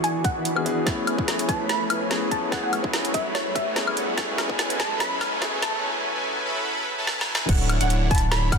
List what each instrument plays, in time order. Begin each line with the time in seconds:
Already playing: supersaw synth E3 E4 F#4 D5 C#6, grand piano B3 D4 F#4 G#4, riser
0.04 synth pluck G#5, closed hi-hat
0.24 synth pluck F#5, kick, closed hi-hat
0.36 supersaw synth E3 E4 F#4 D5 B5
0.45 closed hi-hat
0.56 supersaw synth E3 E4 F#4 D5 G#5, grand piano B3 D4 F#4 G#4, high woodblock
0.65 grand piano B3 D4 F#4 G#4, closed hi-hat
0.86 supersaw synth A3 E4 B4 C#5 G#5, grand piano B3 C#4 E4 G#4, kick, snare, closed hi-hat
1.07 closed hi-hat, high woodblock
1.17 supersaw synth A3 E4 B4 C#5 G#5, grand piano B3 C#4 E4 G#4, kick
1.28 snare, closed hi-hat
1.39 closed hi-hat
1.49 supersaw synth A3 E4 B4 C#5 B5, synth pluck A5, kick, closed hi-hat
1.69 synth pluck B5, snare, closed hi-hat
1.90 supersaw synth A3 E4 B4 C#5 G#5, closed hi-hat, high woodblock
2.10 grand piano B3 C#4 E4 G#4, snare, closed hi-hat
2.31 supersaw synth A3 E4 B4 C#5 F#5, synth pluck A5, kick, closed hi-hat
2.51 supersaw synth A3 E4 B4 C#5 G#5, grand piano B3 C#4 E4 G#4, synth pluck F#5, kick, snare, closed hi-hat
2.63 synth pluck F#5
2.73 closed hi-hat, high woodblock
2.82 supersaw synth A3 E4 B4 C#5 G#5, grand piano B3 C#4 E4, kick
2.86 grand piano G#4
2.93 snare, closed hi-hat
3.05 closed hi-hat
3.14 supersaw synth A3 E4 B4 C#5 B5, synth pluck E5, kick, closed hi-hat
3.35 synth pluck C#5, snare, closed hi-hat
3.55 supersaw synth A3 E4 B4 C#5 G#5, synth pluck E5, kick, closed hi-hat
3.75 grand piano B3 C#4 E4 G#4, snare, closed hi-hat
3.87 high woodblock
3.97 supersaw synth A3 E4 B4 C#5 F#5, closed hi-hat
4.17 supersaw synth F#3 C#4 E4 A4 B4 G#5, grand piano A3 B3 E4 G#4, kick, snare, closed hi-hat
4.38 snare, closed hi-hat, high woodblock
4.48 supersaw synth F#3 C#4 E4 A4 B4 G#5, grand piano A3 B3 E4, kick
4.52 grand piano G#5
4.59 snare, closed hi-hat
4.70 closed hi-hat
4.80 supersaw synth F#3 C#4 E4 A4 B4 B5, synth pluck A5, kick, snare, closed hi-hat
5.00 synth pluck B5, snare, closed hi-hat
5.21 supersaw synth F#3 C#4 E4 A4 B4 G#5, snare, closed hi-hat, high woodblock
5.41 grand piano A3 B3 E4 G#4, snare, closed hi-hat
5.62 supersaw synth F#3 C#4 E4 A4 B4 F#5, synth pluck A5, kick, snare, closed hi-hat
5.83 supersaw synth F#3 C#4 E4 A4 B4 G#5
6.15 supersaw synth F#3 C#4 E4 A4 B4 G#5
6.45 supersaw synth F#3 C#4 E4 A4 B4 B5
6.98 supersaw synth F#3 C#4 E4 A4 B4 A5
7.07 snare
7.19 supersaw synth F#3 C#4 E4 A4 B4 G#5, snare
7.35 snare
7.49 sub bass D1, supersaw synth D3 D4 E4 C#5 F#5, synth pluck F#5, kick, closed hi-hat, crash
7.69 closed hi-hat, high woodblock
7.81 sub bass D1, supersaw synth D3 D4 E4 C#5 F#5, synth pluck F#5, closed hi-hat
7.90 closed hi-hat
8.11 sub bass D1, supersaw synth D3 D4 E4 C#5 B5, synth pluck A5 B5, kick, closed hi-hat
8.15 closed hi-hat
8.18 closed hi-hat
8.31 synth pluck B5, snare, closed hi-hat
8.52 sub bass D1, supersaw synth D3 D4 E4 C#5 F#5, synth pluck F#5, kick, closed hi-hat, high woodblock